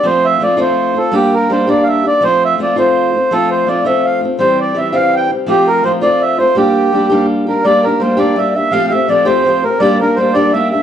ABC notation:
X:1
M:6/8
L:1/16
Q:3/8=111
K:Gdor
V:1 name="Accordion"
c2 e2 d2 c4 A2 | G2 B2 c2 d3/2 f/2 e2 d2 | c2 e2 d2 c6 | A2 c2 d2 e2 f2 z2 |
c2 d2 e2 f2 g2 z2 | G2 B2 c2 d2 e2 c2 | G8 z2 B2 | d2 B2 c2 d2 e2 e2 |
f3/2 f/2 e2 d2 c4 B2 | d2 B2 c2 d2 e2 e2 |]
V:2 name="Flute"
z12 | z12 | z12 | A2 c3/2 c/2 d2 e2 f2 z2 |
c2 d2 e2 f2 g2 z2 | G2 B2 c2 d2 e2 c2 | G8 z2 B2 | d2 B2 c2 d4 e2 |
f2 e2 d2 c4 B2 | d2 B2 c2 d2 e2 e2 |]
V:3 name="Steel-string acoustic guitar"
[F,A,CF]4 [F,A,CF]2 [F,A,CF]4 [A,CF]2 | [G,B,DG]4 [G,B,DG]2 [G,B,DG]4 [B,DG]2 | [F,A,CF]4 [F,A,CF]2 [F,A,CF]4 [A,CF]2 | [F,A,CF]4 [F,A,CF]2 [F,A,CF]4 [A,CF]2 |
[E,G,CG]4 [E,G,CG]2 [E,G,CG]4 [G,CG]2 | [F,A,CF]4 [F,A,CF]2 [F,A,CF]4 [A,CF]2 | [G,B,DG]4 [G,B,DG]2 [G,B,DG]4 [B,DG]2 | [G,B,DG]2 [B,DG]2 [G,B,DG]2 [G,B,DG]2 [G,B,DG]2 [B,DG]2 |
[F,A,CG]2 [A,CG]2 [F,A,CG]2 [F,A,CG]2 [F,A,CG]2 [A,CG]2 | [G,B,DG]2 [B,DG]2 [G,B,DG]2 [G,B,DG]2 [G,B,DG]2 [B,DG]2 |]